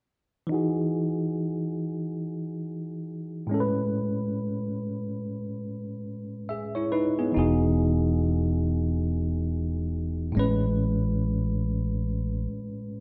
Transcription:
0, 0, Header, 1, 3, 480
1, 0, Start_track
1, 0, Key_signature, 4, "major"
1, 0, Tempo, 500000
1, 12482, End_track
2, 0, Start_track
2, 0, Title_t, "Tine electric piano"
2, 0, Program_c, 0, 4
2, 450, Note_on_c, 0, 52, 54
2, 474, Note_on_c, 0, 63, 48
2, 497, Note_on_c, 0, 66, 50
2, 518, Note_on_c, 0, 68, 61
2, 642, Control_c, 0, 64, 127
2, 3306, Note_off_c, 0, 52, 0
2, 3318, Note_off_c, 0, 63, 0
2, 3330, Note_off_c, 0, 66, 0
2, 3330, Note_on_c, 0, 45, 55
2, 3340, Note_off_c, 0, 68, 0
2, 3354, Note_on_c, 0, 56, 52
2, 3371, Control_c, 0, 64, 0
2, 3372, Note_on_c, 0, 61, 52
2, 3400, Note_on_c, 0, 69, 53
2, 3455, Note_off_c, 0, 69, 0
2, 3459, Note_on_c, 0, 71, 68
2, 3518, Control_c, 0, 64, 127
2, 6207, Note_off_c, 0, 61, 0
2, 6231, Note_on_c, 0, 76, 50
2, 6244, Note_on_c, 0, 68, 38
2, 6250, Note_off_c, 0, 71, 0
2, 6474, Note_off_c, 0, 76, 0
2, 6480, Note_on_c, 0, 73, 50
2, 6481, Note_off_c, 0, 68, 0
2, 6490, Note_on_c, 0, 64, 46
2, 6597, Note_off_c, 0, 45, 0
2, 6609, Note_off_c, 0, 56, 0
2, 6637, Note_off_c, 0, 73, 0
2, 6642, Note_off_c, 0, 64, 0
2, 6642, Note_on_c, 0, 71, 58
2, 6648, Note_on_c, 0, 63, 48
2, 6885, Note_off_c, 0, 71, 0
2, 6888, Note_off_c, 0, 63, 0
2, 6900, Note_on_c, 0, 59, 42
2, 6900, Note_on_c, 0, 68, 45
2, 7027, Note_on_c, 0, 52, 51
2, 7051, Note_on_c, 0, 63, 53
2, 7070, Note_on_c, 0, 66, 50
2, 7071, Control_c, 0, 64, 0
2, 7081, Note_off_c, 0, 68, 0
2, 7092, Note_on_c, 0, 68, 56
2, 7267, Control_c, 0, 64, 127
2, 7291, Note_off_c, 0, 59, 0
2, 9886, Note_off_c, 0, 52, 0
2, 9898, Note_off_c, 0, 63, 0
2, 9907, Note_off_c, 0, 66, 0
2, 9909, Note_on_c, 0, 45, 56
2, 9918, Note_off_c, 0, 68, 0
2, 9936, Note_on_c, 0, 56, 54
2, 9953, Control_c, 0, 64, 0
2, 9956, Note_on_c, 0, 61, 50
2, 9978, Note_on_c, 0, 71, 61
2, 10136, Control_c, 0, 64, 127
2, 12482, Note_off_c, 0, 45, 0
2, 12482, Note_off_c, 0, 56, 0
2, 12482, Note_off_c, 0, 61, 0
2, 12482, Note_off_c, 0, 71, 0
2, 12482, End_track
3, 0, Start_track
3, 0, Title_t, "Fingered electric bass"
3, 0, Program_c, 1, 33
3, 7074, Note_on_c, 1, 28, 64
3, 9909, Note_off_c, 1, 28, 0
3, 9951, Note_on_c, 1, 33, 64
3, 11965, Note_off_c, 1, 33, 0
3, 12482, End_track
0, 0, End_of_file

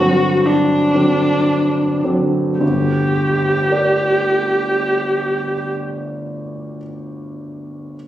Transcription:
0, 0, Header, 1, 3, 480
1, 0, Start_track
1, 0, Key_signature, -2, "minor"
1, 0, Tempo, 923077
1, 243, Tempo, 1001669
1, 723, Tempo, 1145038
1, 1203, Tempo, 1067616
1, 1204, Time_signature, 3, 2, 24, 8
1, 2163, Tempo, 1022147
1, 3726, End_track
2, 0, Start_track
2, 0, Title_t, "Viola"
2, 0, Program_c, 0, 41
2, 0, Note_on_c, 0, 66, 65
2, 239, Note_on_c, 0, 62, 60
2, 246, Note_off_c, 0, 66, 0
2, 964, Note_off_c, 0, 62, 0
2, 1195, Note_on_c, 0, 67, 44
2, 2605, Note_off_c, 0, 67, 0
2, 3726, End_track
3, 0, Start_track
3, 0, Title_t, "Grand piano"
3, 0, Program_c, 1, 0
3, 0, Control_c, 1, 64, 127
3, 0, Note_on_c, 1, 43, 45
3, 0, Note_on_c, 1, 50, 29
3, 1, Note_on_c, 1, 54, 30
3, 4, Note_on_c, 1, 60, 30
3, 454, Note_off_c, 1, 50, 0
3, 455, Note_off_c, 1, 54, 0
3, 456, Note_off_c, 1, 60, 0
3, 472, Note_on_c, 1, 50, 29
3, 474, Note_on_c, 1, 54, 26
3, 476, Note_on_c, 1, 60, 27
3, 948, Note_off_c, 1, 50, 0
3, 949, Note_off_c, 1, 54, 0
3, 949, Note_off_c, 1, 60, 0
3, 961, Note_on_c, 1, 50, 24
3, 964, Note_on_c, 1, 54, 23
3, 964, Note_on_c, 1, 60, 25
3, 1185, Note_off_c, 1, 50, 0
3, 1186, Note_off_c, 1, 54, 0
3, 1186, Note_off_c, 1, 60, 0
3, 1199, Note_on_c, 1, 38, 29
3, 1200, Note_on_c, 1, 31, 27
3, 1213, Control_c, 1, 64, 0
3, 1215, Note_off_c, 1, 43, 0
3, 1318, Control_c, 1, 64, 127
3, 1680, Note_on_c, 1, 67, 26
3, 1690, Note_on_c, 1, 70, 23
3, 1700, Note_on_c, 1, 74, 23
3, 2609, Note_off_c, 1, 38, 0
3, 2611, Note_off_c, 1, 31, 0
3, 3112, Note_off_c, 1, 67, 0
3, 3123, Note_off_c, 1, 70, 0
3, 3132, Note_off_c, 1, 74, 0
3, 3668, Control_c, 1, 64, 0
3, 3726, End_track
0, 0, End_of_file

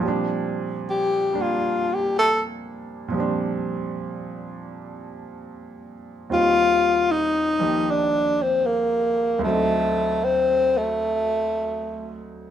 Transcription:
0, 0, Header, 1, 3, 480
1, 0, Start_track
1, 0, Key_signature, -2, "major"
1, 0, Tempo, 782269
1, 20, Time_signature, 4, 2, 24, 8
1, 3863, Key_signature, -3, "major"
1, 7673, End_track
2, 0, Start_track
2, 0, Title_t, "Tenor saxophone"
2, 0, Program_c, 0, 66
2, 552, Note_on_c, 0, 67, 85
2, 869, Note_on_c, 0, 65, 73
2, 878, Note_off_c, 0, 67, 0
2, 1190, Note_on_c, 0, 67, 70
2, 1200, Note_off_c, 0, 65, 0
2, 1321, Note_off_c, 0, 67, 0
2, 1343, Note_on_c, 0, 69, 93
2, 1489, Note_off_c, 0, 69, 0
2, 3887, Note_on_c, 0, 65, 104
2, 4362, Note_on_c, 0, 63, 87
2, 4372, Note_off_c, 0, 65, 0
2, 4852, Note_on_c, 0, 62, 92
2, 4861, Note_off_c, 0, 63, 0
2, 5167, Note_on_c, 0, 60, 80
2, 5176, Note_off_c, 0, 62, 0
2, 5313, Note_on_c, 0, 58, 76
2, 5322, Note_off_c, 0, 60, 0
2, 5791, Note_off_c, 0, 58, 0
2, 5794, Note_on_c, 0, 57, 88
2, 6286, Note_on_c, 0, 60, 87
2, 6295, Note_off_c, 0, 57, 0
2, 6612, Note_on_c, 0, 57, 82
2, 6621, Note_off_c, 0, 60, 0
2, 7560, Note_off_c, 0, 57, 0
2, 7673, End_track
3, 0, Start_track
3, 0, Title_t, "Grand piano"
3, 0, Program_c, 1, 0
3, 0, Control_c, 1, 64, 127
3, 0, Note_on_c, 1, 46, 56
3, 0, Note_on_c, 1, 53, 48
3, 17, Note_on_c, 1, 55, 47
3, 27, Control_c, 1, 64, 0
3, 33, Note_on_c, 1, 60, 43
3, 50, Note_on_c, 1, 62, 65
3, 135, Control_c, 1, 64, 127
3, 807, Note_off_c, 1, 55, 0
3, 816, Note_on_c, 1, 55, 46
3, 821, Note_off_c, 1, 62, 0
3, 822, Note_on_c, 1, 58, 40
3, 830, Note_on_c, 1, 62, 53
3, 1883, Note_off_c, 1, 46, 0
3, 1892, Note_on_c, 1, 46, 53
3, 1904, Note_off_c, 1, 53, 0
3, 1913, Note_on_c, 1, 53, 46
3, 1918, Note_off_c, 1, 55, 0
3, 1927, Note_on_c, 1, 55, 44
3, 1928, Note_off_c, 1, 58, 0
3, 1932, Note_off_c, 1, 62, 0
3, 1936, Note_off_c, 1, 60, 0
3, 1949, Note_on_c, 1, 60, 46
3, 1963, Note_on_c, 1, 62, 56
3, 3844, Note_off_c, 1, 46, 0
3, 3855, Note_off_c, 1, 53, 0
3, 3861, Note_off_c, 1, 60, 0
3, 3862, Note_off_c, 1, 55, 0
3, 3863, Note_on_c, 1, 39, 42
3, 3866, Note_on_c, 1, 51, 42
3, 3870, Note_on_c, 1, 60, 37
3, 3871, Control_c, 1, 64, 0
3, 3872, Note_on_c, 1, 55, 42
3, 3872, Note_on_c, 1, 65, 46
3, 3880, Note_off_c, 1, 62, 0
3, 3966, Control_c, 1, 64, 127
3, 4650, Note_off_c, 1, 51, 0
3, 4659, Note_on_c, 1, 51, 43
3, 4662, Note_on_c, 1, 53, 38
3, 4671, Note_on_c, 1, 58, 40
3, 4678, Note_on_c, 1, 67, 45
3, 5761, Note_on_c, 1, 38, 54
3, 5775, Note_on_c, 1, 50, 47
3, 5785, Note_off_c, 1, 51, 0
3, 5786, Note_off_c, 1, 53, 0
3, 5789, Note_off_c, 1, 39, 0
3, 5791, Note_off_c, 1, 58, 0
3, 5793, Note_off_c, 1, 60, 0
3, 5794, Note_off_c, 1, 55, 0
3, 5794, Note_off_c, 1, 65, 0
3, 5794, Note_off_c, 1, 67, 0
3, 5796, Note_on_c, 1, 54, 43
3, 5797, Control_c, 1, 64, 0
3, 5812, Note_on_c, 1, 60, 44
3, 5827, Note_on_c, 1, 63, 53
3, 5891, Control_c, 1, 64, 127
3, 7673, Note_off_c, 1, 38, 0
3, 7673, Note_off_c, 1, 50, 0
3, 7673, Note_off_c, 1, 54, 0
3, 7673, Note_off_c, 1, 60, 0
3, 7673, Note_off_c, 1, 63, 0
3, 7673, End_track
0, 0, End_of_file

